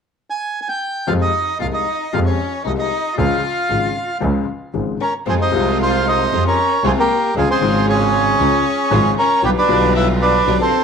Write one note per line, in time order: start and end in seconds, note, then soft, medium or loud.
0.30 0.60 G#5 medium
0.61 0.68 G#5 medium
0.69 1.09 G5 medium
1.07 1.30 F2 medium
1.07 1.29 C3 medium
1.07 1.30 F3 medium
1.07 1.30 G#3 soft
1.07 1.30 F4 medium
1.07 1.13 F4 medium
1.07 1.14 F5 medium
1.20 1.57 D#4 medium
1.20 1.58 D#5 medium
1.59 1.83 C2 soft
1.59 1.83 C3 soft
1.59 1.83 F3 soft
1.59 1.83 G#3 soft
1.59 1.66 F4 medium
1.59 1.83 F4 soft
1.59 1.67 F5 medium
1.73 2.10 D#4 soft
1.73 2.14 D#5 medium
2.12 2.35 F2 medium
2.12 2.35 C3 medium
2.12 2.35 F3 medium
2.12 2.35 G#3 soft
2.12 2.19 F4 soft
2.12 2.35 F4 medium
2.12 2.20 F5 medium
2.26 2.63 C#4 medium
2.26 2.63 C#5 medium
2.64 2.87 C2 soft
2.64 2.88 C2 soft
2.64 2.88 C3 soft
2.64 2.88 F3 soft
2.64 2.88 G#3 soft
2.64 2.70 D#4 medium
2.64 2.88 F4 soft
2.64 2.72 D#5 medium
2.78 3.14 D#4 medium
2.78 3.15 D#5 medium
3.17 3.40 C#2 medium
3.17 3.40 C#3 medium
3.17 3.40 F3 medium
3.17 3.40 G#3 medium
3.17 4.17 F4 medium
3.17 3.40 F4 medium
3.17 4.18 F5 medium
3.70 3.91 G#1 soft
3.70 3.92 G#1 soft
3.70 3.91 G#2 soft
3.70 3.91 C#3 soft
3.70 3.91 F3 soft
3.70 3.92 G#3 soft
3.70 3.91 F4 soft
4.20 4.43 C#2 medium
4.20 4.44 C#2 medium
4.20 4.43 C#3 medium
4.20 4.43 F3 soft
4.20 4.43 G#3 soft
4.20 4.43 F4 medium
4.74 4.96 G#1 soft
4.74 4.96 G#1 medium
4.74 4.96 G#2 soft
4.74 4.96 C#3 soft
4.74 4.96 F3 soft
4.74 4.96 G#3 soft
4.74 4.96 F4 soft
5.01 5.12 C#4 medium
5.01 5.14 A#4 soft
5.01 5.14 C#5 medium
5.26 5.49 F2 soft
5.26 5.49 C3 soft
5.26 5.49 F3 soft
5.26 5.49 G#3 soft
5.26 5.32 C4 medium
5.26 5.49 C4 soft
5.26 5.49 F4 soft
5.26 5.35 G#4 medium
5.26 5.34 C5 medium
5.38 5.76 D#4 medium
5.38 5.78 C5 medium
5.38 5.78 D#5 medium
5.51 6.28 C2 medium
5.51 6.29 C2 medium
5.51 6.28 C3 medium
5.51 6.28 F3 medium
5.51 6.28 G#3 medium
5.51 6.28 C4 medium
5.51 6.28 F4 medium
5.55 6.29 F4 medium
5.81 6.05 F4 medium
5.81 6.06 C5 medium
5.81 6.08 F5 medium
6.06 6.42 D#4 medium
6.06 6.44 C5 medium
6.06 6.44 D#5 medium
6.32 6.54 F2 medium
6.32 6.54 F2 soft
6.32 6.54 C3 soft
6.32 6.54 F3 soft
6.32 6.54 G#3 soft
6.32 6.54 C4 soft
6.32 6.54 F4 soft
6.32 6.54 F4 medium
6.44 6.81 C#4 medium
6.44 6.83 A#4 medium
6.44 6.87 C#5 medium
6.84 7.06 C2 medium
6.84 7.06 C3 medium
6.84 7.06 F3 medium
6.84 7.06 G#3 medium
6.84 6.90 C4 medium
6.84 7.06 C4 medium
6.84 7.06 F4 medium
6.84 6.92 G#4 medium
6.84 6.92 C5 medium
6.97 7.33 A#3 medium
6.97 7.35 G4 medium
6.97 7.35 A#4 medium
7.35 7.57 C#2 medium
7.35 7.58 C#2 medium
7.35 7.58 C#3 soft
7.35 7.58 F3 soft
7.35 7.48 G#3 medium
7.35 7.58 G#3 soft
7.35 7.58 C#4 soft
7.35 7.58 F4 soft
7.35 7.59 F4 soft
7.35 7.49 F4 medium
7.35 7.49 G#4 medium
7.48 7.85 C4 medium
7.48 7.86 G#4 medium
7.48 7.86 C5 medium
7.60 8.35 G#1 medium
7.60 8.36 G#1 medium
7.60 8.36 G#2 medium
7.60 8.35 C#3 medium
7.60 8.36 F3 medium
7.60 8.36 G#3 medium
7.60 8.36 C#4 medium
7.60 8.36 F4 medium
7.60 8.37 F4 medium
7.88 9.13 C#4 medium
7.88 9.14 G#4 medium
7.88 9.14 C#5 medium
8.39 8.61 C#2 medium
8.39 8.62 C#2 soft
8.39 8.61 C#3 soft
8.39 8.61 F3 soft
8.39 8.61 G#3 soft
8.39 8.62 G#3 soft
8.39 8.62 C#4 soft
8.39 8.62 F4 medium
8.39 8.62 F4 soft
8.91 9.13 G#1 medium
8.91 9.13 G#2 medium
8.91 9.13 C#3 medium
8.91 9.13 F3 medium
8.91 9.13 G#3 medium
8.91 9.13 C#4 medium
8.91 9.13 F4 medium
9.17 9.41 C#4 medium
9.17 9.42 A#4 medium
9.17 9.45 C#5 medium
9.43 9.65 B1 medium
9.43 9.65 B2 soft
9.43 9.65 D3 soft
9.43 9.65 G3 soft
9.43 9.65 B3 soft
9.43 9.50 B3 medium
9.43 9.65 F4 medium
9.43 9.65 F4 soft
9.43 9.50 G4 medium
9.43 9.51 B4 medium
9.57 9.93 D4 medium
9.57 9.93 B4 medium
9.57 9.93 D5 medium
9.67 10.42 B1 medium
9.67 10.43 B1 medium
9.67 10.43 B2 medium
9.67 10.42 D3 medium
9.67 10.43 G3 medium
9.67 10.43 B3 medium
9.67 10.43 F4 medium
9.71 10.44 F4 medium
9.95 10.07 E4 medium
9.95 10.08 B4 medium
9.95 10.08 E5 medium
10.21 10.57 D4 medium
10.21 10.58 B4 medium
10.21 10.62 D5 medium
10.46 10.68 B1 medium
10.46 10.69 B1 soft
10.46 10.69 B2 medium
10.46 10.69 D3 soft
10.46 10.68 G3 medium
10.46 10.69 G3 soft
10.46 10.69 B3 soft
10.46 10.69 F4 medium
10.46 10.69 F4 soft
10.60 10.84 C4 medium
10.60 10.84 A4 medium
10.60 10.84 C5 medium